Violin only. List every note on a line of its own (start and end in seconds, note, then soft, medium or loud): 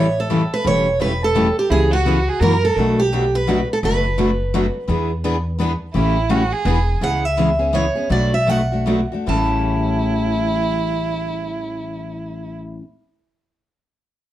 1.70 1.80 E4 medium
1.90 2.30 F#4 medium
2.28 2.41 G#4 medium
2.40 2.69 A#4 loud
5.95 6.32 E4 medium
6.30 6.54 F#4 medium
6.52 7.01 G#4 medium
9.28 12.54 E4 medium